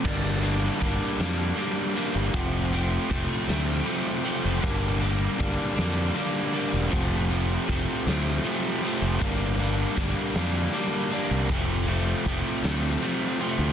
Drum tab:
CC |x-----|------|------|------|
HH |-xxxxx|xxxxxx|xxxxxx|xxxxxx|
SD |---o--|---o--|---o--|---o--|
BD |o-o---|o-o---|o-o---|o-o---|

CC |------|------|
HH |xxxxxx|xxxxxx|
SD |---o--|---o--|
BD |o-o---|o-o---|